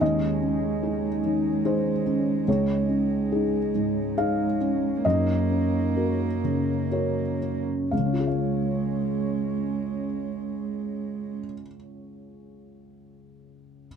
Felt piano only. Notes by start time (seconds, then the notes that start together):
0.01 D#2 D#5
0.42 C#4
0.83 D#4 G#4
1.25 D#3
1.65 D#4 G#4 C5
2.06 C#4
2.48 C#2 C#5
2.89 C#4
3.32 D#4 G#4
3.75 G#2
4.17 D#4 G#4 F5
4.61 C#4
5.05 F#2 D#5
5.50 C#4
5.96 F#4 A#4
6.44 C#3
6.92 F#4 A#4 C#5
7.42 C#4
7.91 C#2 F5
7.99 C#3
8.06 C#4
8.13 F4
8.20 G#4
8.27 F5